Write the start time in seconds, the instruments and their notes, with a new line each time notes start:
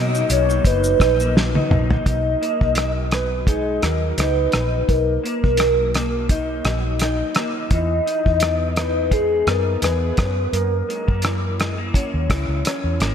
Already playing: fingered electric bass B2, clean electric guitar B2 F#3 A#3 D#4, analog synth pad F#3 D#4, soft synth lead D#5
0.14 clean electric guitar D#4, shaker
0.29 fingered electric bass B1, clean electric guitar A#3, soft synth lead C#5, closed hi-hat, shaker
0.49 clean electric guitar D#4, shaker
0.65 fingered electric bass F#1, clean electric guitar D#4, soft synth lead B4, kick, closed hi-hat, shaker
0.84 shaker
1.00 fingered electric bass A#1, clean electric guitar D#4, kick, cross-stick, closed hi-hat, shaker
1.20 clean electric guitar A#3, shaker
1.35 clean electric guitar F#3, snare
1.55 clean electric guitar D#4, high tom
1.70 fingered electric bass A#1, clean electric guitar A#3, mid tom
1.90 clean electric guitar D#4, floor tom
2.05 fingered electric bass B1, soft synth lead D#5, kick, closed hi-hat
2.42 clean electric guitar A#3, closed hi-hat
2.61 fingered electric bass B1, kick
2.75 clean electric guitar F#3, cross-stick, closed hi-hat
3.11 soft synth lead B4, cross-stick, closed hi-hat
3.47 clean electric guitar D#4, soft synth lead G#4, kick, closed hi-hat
3.82 fingered electric bass D#2, clean electric guitar F#3, soft synth lead A#4, cross-stick, closed hi-hat
4.18 fingered electric bass C#2, clean electric guitar D#4, soft synth lead B4, cross-stick, closed hi-hat
4.52 fingered electric bass A#1, cross-stick, closed hi-hat
4.88 fingered electric bass B1, soft synth lead A#4, kick, closed hi-hat
5.24 clean electric guitar A#3, soft synth lead A#4, closed hi-hat
5.43 fingered electric bass B1, kick
5.57 clean electric guitar F#3, cross-stick, closed hi-hat
5.94 clean electric guitar A#3, cross-stick, closed hi-hat
6.29 clean electric guitar D#4, kick, closed hi-hat
6.65 fingered electric bass A#1, clean electric guitar F#3, cross-stick, closed hi-hat
6.99 clean electric guitar D#4, cross-stick, closed hi-hat
7.35 clean electric guitar A#3, cross-stick, closed hi-hat
7.71 fingered electric bass E2, clean electric guitar E3, soft synth lead D#5, kick, closed hi-hat
8.06 clean electric guitar D#4, closed hi-hat
8.26 fingered electric bass E2, kick
8.40 clean electric guitar B3, cross-stick, closed hi-hat
8.76 clean electric guitar D#4, soft synth lead B4, cross-stick, closed hi-hat
9.11 clean electric guitar G#4, soft synth lead G#4, kick, closed hi-hat
9.47 fingered electric bass F#2, clean electric guitar B3, soft synth lead A#4, cross-stick, closed hi-hat
9.82 fingered electric bass E2, clean electric guitar G#4, soft synth lead B4, cross-stick, closed hi-hat
10.17 clean electric guitar F#2, fingered electric bass F#2, kick, cross-stick, closed hi-hat
10.53 fingered electric bass F#2, clean electric guitar F#2, soft synth lead A#4, closed hi-hat
10.88 clean electric guitar G#3, soft synth lead A#4, closed hi-hat
11.07 fingered electric bass F#2, clean electric guitar A#3, kick
11.22 clean electric guitar E3, cross-stick, closed hi-hat
11.59 clean electric guitar G#3, cross-stick, closed hi-hat
11.78 clean electric guitar A#3
11.94 clean electric guitar C#4, kick, closed hi-hat
12.14 fingered electric bass D#2
12.30 clean electric guitar E3, kick, cross-stick, closed hi-hat
12.48 fingered electric bass C#2
12.65 clean electric guitar C#4, cross-stick, closed hi-hat
12.84 fingered electric bass E2
13.00 fingered electric bass G#1, clean electric guitar A#3, cross-stick, closed hi-hat